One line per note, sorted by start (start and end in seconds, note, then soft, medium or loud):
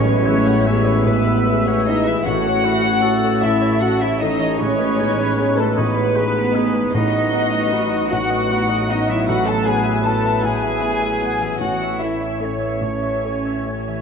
0.00 0.25 A1 medium
0.00 2.22 A1 loud
0.00 0.25 A2 medium
0.00 1.03 A2 loud
0.00 2.24 A2 medium
0.00 2.29 F#3 medium
0.00 2.23 G#3 medium
0.00 1.04 C#4 loud
0.00 2.22 E4 medium
0.00 2.29 F#4 medium
0.00 0.66 B4 medium
0.00 0.28 C#5 medium
0.00 1.04 C#5 loud
0.00 1.06 C#5 medium
0.00 2.29 F#5 medium
0.06 1.86 B3 medium
0.06 0.27 B4 medium
0.26 2.06 E3 medium
0.26 0.63 B3 medium
0.26 0.63 E4 medium
0.26 0.63 G#4 medium
0.26 0.68 B4 medium
0.26 0.46 E5 medium
0.47 1.66 G#4 medium
0.47 0.66 F#5 medium
0.67 1.03 B3 medium
0.67 1.03 E4 medium
0.67 1.03 G#4 medium
0.67 1.46 B4 medium
0.67 0.87 E5 medium
0.67 2.26 E5 loud
0.87 1.07 B4 medium
1.06 1.45 A1 medium
1.06 1.45 A2 medium
1.06 1.67 B3 medium
1.06 1.27 G#4 medium
1.06 1.66 B4 medium
1.06 1.65 B4 medium
1.06 1.46 E5 medium
1.06 2.29 G#5 medium
1.27 1.47 B4 medium
1.47 1.83 B3 medium
1.47 1.83 E4 medium
1.47 1.83 G#4 medium
1.47 2.29 B4 medium
1.47 1.67 E5 medium
1.67 1.87 C#4 medium
1.67 2.29 G#4 medium
1.67 1.86 C#5 medium
1.67 1.87 C#5 medium
1.67 1.87 F#5 medium
1.87 2.29 B3 medium
1.87 2.23 B3 medium
1.87 2.06 D#4 medium
1.87 2.23 E4 medium
1.87 2.23 G#4 medium
1.87 2.06 D#5 medium
1.87 2.07 D#5 medium
1.87 2.06 E5 medium
2.07 2.29 E3 medium
2.07 2.26 E4 medium
2.07 2.26 B4 medium
2.07 2.26 E5 medium
2.25 6.91 A1 medium
2.25 2.63 A1 medium
2.25 4.58 A2 medium
2.25 2.64 A2 medium
2.25 4.56 A3 medium
2.25 5.74 C#4 medium
2.25 3.43 F#4 loud
2.25 2.44 A4 medium
2.25 2.44 C#5 medium
2.25 2.66 C#5 medium
2.25 3.42 F#5 loud
2.25 3.18 F#5 loud
2.25 3.43 F#5 loud
2.45 4.18 C#4 medium
2.45 2.65 C#5 medium
2.64 2.99 C#4 soft
2.64 3.00 E4 soft
2.64 3.00 A4 medium
2.64 3.03 B4 medium
2.64 2.84 E5 medium
2.83 3.99 A4 medium
2.83 3.03 C#5 medium
3.02 3.39 C#4 medium
3.02 3.39 E4 medium
3.02 4.31 A4 medium
3.02 3.23 A4 medium
3.02 3.39 A4 medium
3.02 3.80 C#5 medium
3.24 3.43 C#5 medium
3.41 3.80 A1 medium
3.41 3.80 A2 medium
3.41 3.81 E4 medium
3.41 3.80 E5 medium
3.41 3.81 E5 medium
3.41 3.62 E5 medium
3.41 3.81 E5 medium
3.41 4.63 A5 medium
3.62 3.81 C#5 medium
3.80 4.16 C#4 medium
3.80 4.16 E4 medium
3.80 4.01 F#4 loud
3.80 4.01 A4 medium
3.80 4.17 A4 medium
3.80 4.00 F#5 medium
3.80 4.01 F#5 medium
4.00 4.21 E4 medium
4.00 4.63 A4 medium
4.00 4.20 C#5 medium
4.00 4.20 E5 medium
4.20 4.56 E3 medium
4.20 4.62 C#4 medium
4.20 4.56 C#4 medium
4.20 4.60 D#4 medium
4.20 4.56 A4 medium
4.20 4.59 D#5 loud
4.20 4.59 D#5 medium
4.20 4.60 D#5 medium
4.20 4.40 E5 medium
4.39 4.62 E3 medium
4.39 4.59 C#5 medium
4.59 4.98 A1 medium
4.59 6.93 A2 medium
4.59 4.98 A2 medium
4.59 5.74 A2 loud
4.59 6.78 G#3 medium
4.59 5.58 C#4 loud
4.59 4.78 G#4 medium
4.59 5.74 B4 medium
4.59 5.58 C#5 loud
4.59 5.56 C#5 loud
4.59 5.57 C#5 medium
4.59 4.97 D#5 medium
4.79 6.54 B3 medium
4.79 4.99 B4 medium
4.98 5.34 B3 medium
4.98 7.32 D#4 medium
4.98 5.34 D#4 soft
4.98 5.35 G#4 medium
4.98 5.18 D#5 medium
5.17 6.35 G#4 medium
5.17 5.38 B4 medium
5.37 5.74 B3 medium
5.37 5.74 D#4 medium
5.37 5.58 G#4 medium
5.37 5.74 G#4 medium
5.37 6.15 B4 medium
5.57 5.78 A3 medium
5.57 5.77 A4 medium
5.57 5.78 A4 medium
5.57 5.77 B4 medium
5.57 5.96 D#5 medium
5.76 6.15 A1 medium
5.76 6.15 A2 medium
5.76 6.95 B3 loud
5.76 6.78 B3 medium
5.76 6.94 B4 medium
5.76 6.95 B4 loud
5.76 6.17 C#5 medium
5.76 5.96 D#5 medium
5.76 6.98 G#5 medium
5.96 6.16 B4 medium
5.96 7.91 D#5 medium
6.16 6.51 B3 medium
6.16 6.52 D#4 medium
6.16 6.36 G#4 medium
6.16 6.52 G#4 medium
6.16 6.56 B4 medium
6.16 7.71 B4 medium
6.35 6.98 G#4 medium
6.35 6.55 B4 medium
6.55 6.91 B3 medium
6.55 6.91 D#4 medium
6.55 6.94 G#4 medium
6.55 6.91 G#4 medium
6.55 6.75 D#5 medium
6.75 6.98 G#3 medium
6.75 6.93 B4 medium
6.94 11.56 A1 medium
6.94 7.33 A1 medium
6.94 7.32 A2 medium
6.94 8.08 A2 medium
6.94 9.26 A2 medium
6.94 11.57 F#3 medium
6.94 9.25 B3 medium
6.94 8.10 D#4 loud
6.94 9.31 F#4 medium
6.94 7.12 B4 medium
6.94 8.10 D#5 medium
6.94 8.12 D#5 loud
6.94 7.83 D#5 loud
7.13 8.88 B3 medium
7.13 7.33 D#5 medium
7.33 7.69 B3 medium
7.33 9.31 D#4 medium
7.33 7.69 D#4 medium
7.33 7.70 F#4 medium
7.33 7.53 F#5 medium
7.53 8.69 F#4 medium
7.53 7.73 D#5 medium
7.72 8.08 B3 medium
7.72 8.08 D#4 medium
7.72 8.09 F#4 medium
7.72 7.92 B4 medium
7.72 8.49 B4 medium
7.92 8.12 D#5 medium
7.92 8.30 D#5 medium
8.11 8.50 A1 medium
8.11 8.50 A2 medium
8.11 8.90 F#4 loud
8.11 10.41 F#5 medium
8.11 8.31 F#5 medium
8.11 8.88 F#5 medium
8.11 8.88 F#5 loud
8.11 8.90 F#5 loud
8.31 9.31 D#5 medium
8.31 8.51 D#5 medium
8.50 8.86 B3 medium
8.50 8.86 D#4 medium
8.50 8.86 F#4 medium
8.50 8.70 B4 medium
8.69 9.84 F#4 medium
8.69 8.89 D#5 medium
8.89 9.46 B3 medium
8.89 9.25 B3 medium
8.89 9.09 D#4 medium
8.89 9.25 D#4 medium
8.89 9.25 F#4 medium
8.89 9.09 D#5 medium
8.89 9.08 F#5 medium
9.07 11.64 F#3 medium
9.07 9.28 E4 medium
9.07 9.27 D#5 medium
9.07 9.28 E5 medium
9.27 9.65 A1 medium
9.27 11.59 A2 medium
9.27 10.39 A2 medium
9.27 9.65 A2 medium
9.27 11.57 E4 medium
9.27 9.47 F#4 loud
9.27 9.45 B4 medium
9.27 11.33 B4 medium
9.27 9.45 E5 medium
9.27 9.47 F#5 medium
9.27 9.48 F#5 medium
9.46 11.19 B3 medium
9.46 9.66 A4 loud
9.46 9.66 E5 medium
9.46 9.66 A5 medium
9.46 9.67 A5 medium
9.65 10.00 B3 medium
9.65 10.00 E4 soft
9.65 12.00 E4 medium
9.65 10.01 F#4 soft
9.65 10.04 G#4 medium
9.65 9.85 F#5 medium
9.65 10.05 G#5 medium
9.85 11.00 F#4 medium
9.85 10.04 E5 medium
10.04 10.39 B3 medium
10.04 10.39 E4 medium
10.04 10.40 F#4 medium
10.04 10.43 A4 medium
10.04 10.80 B4 medium
10.04 10.24 B4 medium
10.04 10.43 A5 medium
10.04 10.44 A5 medium
10.23 10.61 E5 medium
10.23 10.43 E5 medium
10.42 10.81 A1 medium
10.42 10.81 A2 medium
10.42 11.61 G#4 loud
10.42 11.64 F#5 medium
10.42 10.63 F#5 medium
10.42 11.60 G#5 medium
10.42 11.61 G#5 medium
10.42 11.59 G#5 medium
10.62 10.82 E5 medium
10.81 11.17 B3 soft
10.81 11.17 E4 soft
10.81 11.17 F#4 medium
10.81 11.01 B4 medium
10.81 11.64 B4 medium
11.01 11.64 F#4 medium
11.01 11.21 E5 medium
11.20 11.64 B3 medium
11.20 11.56 B3 soft
11.20 11.57 E4 soft
11.20 11.57 F#4 medium
11.20 11.41 F#5 medium
11.40 11.64 E3 soft
11.40 11.61 E5 medium
11.60 12.00 A1 soft
11.60 14.02 A1 medium
11.60 14.02 A2 medium
11.60 12.00 A2 medium
11.60 12.79 E3 medium
11.60 12.79 E4 medium
11.60 12.01 F#4 medium
11.60 14.02 C#5 medium
11.60 11.80 C#5 medium
11.60 12.00 F#5 medium
11.60 12.01 F#5 medium
11.81 13.65 A3 soft
11.81 12.01 E5 soft
11.99 12.37 A3 soft
11.99 12.37 E4 soft
11.99 12.42 E4 medium
11.99 12.38 A4 soft
11.99 12.21 C#5 soft
11.99 12.41 E5 medium
11.99 12.42 E5 medium
12.22 13.23 A4 soft
12.22 12.42 E5 soft
12.40 12.78 A3 soft
12.40 12.83 C#4 medium
12.40 12.78 E4 soft
12.40 13.44 E4 soft
12.40 12.78 A4 soft
12.40 12.80 C#5 medium
12.40 12.62 C#5 soft
12.40 12.81 C#5 medium
12.40 12.83 C#5 medium
12.61 12.83 E5 soft
12.81 13.22 A1 soft
12.81 13.23 A2 soft
12.81 14.02 E3 soft
12.81 14.02 C#4 medium
12.81 14.02 E4 soft
12.81 14.02 C#5 medium
12.81 13.04 C#5 medium
12.81 14.02 C#5 medium
12.81 14.02 A5 soft
13.03 13.24 E5 soft
13.03 14.02 E5 soft
13.23 13.62 A3 soft
13.23 13.62 E4 soft
13.23 14.02 A4 soft
13.23 13.63 A4 soft
13.23 13.46 C#5 soft
13.46 13.67 E5 soft
13.64 14.02 A3 soft
13.64 14.02 E4 soft
13.64 14.02 A4 soft
13.64 13.88 C#5 soft
13.88 14.02 E3 soft
13.88 14.02 E5 soft